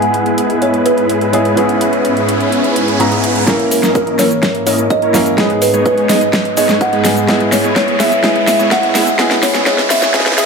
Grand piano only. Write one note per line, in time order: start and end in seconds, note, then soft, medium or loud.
0.00 1.30 G#3 medium
0.00 1.30 B3 medium
0.00 1.31 E4 medium
0.00 1.31 G#4 medium
1.33 1.46 G#3 medium
1.33 1.46 B3 medium
1.33 1.46 E4 medium
1.33 1.46 G#4 medium
1.56 2.97 G#2 medium
1.56 2.97 B3 medium
1.56 2.98 C#4 medium
1.56 2.98 E4 medium
1.56 2.98 G#4 medium
2.99 3.44 G#2 medium
2.99 3.45 B3 medium
2.99 3.45 C#4 medium
2.99 3.45 E4 medium
2.99 3.45 A#5 medium
3.46 5.11 A#3 medium
3.46 5.11 C#4 medium
3.46 5.12 E4 medium
3.46 5.12 A#4 medium
5.14 5.26 A#3 medium
5.14 5.27 C#4 medium
5.14 5.27 E4 medium
5.14 5.27 A#4 loud
5.37 7.01 G#3 medium
5.37 7.02 B3 medium
5.37 7.02 D#4 medium
5.37 7.02 G#4 medium
7.04 7.25 G#3 medium
7.04 7.26 B3 medium
7.04 7.26 D#4 medium
7.04 7.26 G#4 medium
7.27 8.21 G#3 medium
7.27 8.22 B3 medium
7.27 8.22 E4 medium
7.27 8.22 G#4 medium
8.23 9.16 G#3 medium
8.23 9.17 B3 medium
8.23 9.17 E4 medium
8.23 9.18 G#4 medium
9.18 9.64 G#3 medium
9.18 9.65 B3 medium
9.18 9.65 E4 medium
9.18 9.65 G#4 medium
9.65 10.12 G#3 medium
9.65 10.12 B3 medium
9.65 10.13 E4 medium
9.65 10.13 G#4 medium
10.13 10.35 G#3 medium
10.13 10.36 B3 medium
10.13 10.36 E4 medium
10.13 10.37 G#4 medium
10.37 10.46 G#3 medium
10.37 10.46 B3 medium
10.37 10.46 E4 medium
10.37 10.46 G#4 medium